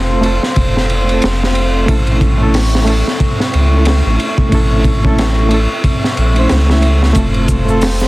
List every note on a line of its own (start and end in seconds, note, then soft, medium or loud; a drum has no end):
0.00 0.39 F1 loud
0.00 0.19 A3 loud
0.00 0.20 C4 medium
0.00 8.08 C4 medium
0.00 0.20 F4 medium
0.00 0.21 A4 loud
0.00 8.08 A4 medium
0.00 1.84 C5 medium
0.00 1.84 F5 medium
0.00 1.84 C6 medium
0.21 0.41 A3 medium
0.21 0.41 C4 medium
0.21 0.42 F4 medium
0.21 ride medium
0.26 0.43 A4 loud
0.43 snare soft
0.56 1.20 F1 medium
0.56 kick loud
0.56 ride medium
0.77 snare soft
0.90 ride medium
1.04 1.83 A3 medium
1.04 1.84 C4 medium
1.09 1.86 F4 medium
1.09 ride soft
1.14 1.88 A4 medium
1.22 1.86 F1 loud
1.22 snare loud
1.22 ride loud
1.43 snare medium
1.55 ride medium
1.86 3.03 A1 loud
1.86 2.35 A3 medium
1.86 2.36 C#4 medium
1.86 2.36 E4 medium
1.86 7.12 E5 medium
1.86 7.12 C#6 medium
1.86 kick loud
1.86 ride medium
1.91 2.37 A4 medium
2.07 ride soft
2.21 kick medium
2.21 ride medium
2.38 2.83 A3 loud
2.38 2.83 C#4 medium
2.38 2.84 E4 medium
2.43 2.85 A4 loud
2.54 snare loud
2.54 open hi-hat medium
2.75 snare medium
2.85 3.04 A3 medium
2.85 3.05 C#4 medium
2.85 3.06 E4 medium
2.85 ride medium
2.90 3.07 A4 medium
3.08 snare soft
3.20 kick loud
3.20 ride medium
3.40 snare medium
3.54 4.02 C#2 medium
3.54 ride medium
3.67 4.46 A3 medium
3.67 4.48 C#4 medium
3.74 4.50 E4 medium
3.74 4.51 A4 medium
3.85 snare loud
3.85 ride medium
4.06 4.18 A1 medium
4.20 ride medium
4.38 kick loud
4.49 5.67 A1 medium
4.49 4.98 A3 medium
4.49 4.99 C#4 medium
4.49 5.00 E4 medium
4.49 kick loud
4.49 ride medium
4.54 5.01 A4 loud
4.84 kick medium
4.84 ride medium
5.02 5.47 A3 medium
5.02 5.47 C#4 medium
5.02 5.48 E4 medium
5.02 kick medium
5.07 5.49 A4 loud
5.18 snare loud
5.18 ride medium
5.49 5.68 A3 medium
5.49 5.69 C#4 medium
5.49 5.70 E4 medium
5.49 ride medium
5.54 5.71 A4 loud
5.84 kick loud
5.84 ride medium
6.04 snare soft
6.17 6.47 A#1 loud
6.17 ride medium
6.34 6.63 A3 medium
6.34 6.64 C#4 medium
6.34 6.65 E4 medium
6.34 ride soft
6.39 6.66 C5 loud
6.49 7.14 C#2 medium
6.49 snare loud
6.49 ride medium
6.66 7.11 A3 medium
6.66 7.12 C#4 medium
6.66 7.13 E4 medium
6.66 snare medium
6.72 7.14 E5 loud
6.82 ride medium
7.03 snare soft
7.13 8.08 F1 loud
7.13 7.62 A3 medium
7.13 7.63 C4 medium
7.13 7.64 F4 medium
7.13 8.08 C5 medium
7.13 8.08 F5 medium
7.13 8.08 C6 medium
7.13 kick loud
7.13 ride medium
7.13 maracas medium
7.18 7.65 A4 medium
7.34 ride soft
7.48 kick medium
7.48 ride medium
7.48 maracas loud
7.65 8.08 A3 loud
7.65 8.08 C4 medium
7.65 8.08 F4 medium
7.65 maracas soft
7.70 8.08 A4 loud
7.81 snare loud
7.81 open hi-hat medium
7.81 maracas medium
8.00 snare medium
8.00 triangle medium
8.00 maracas soft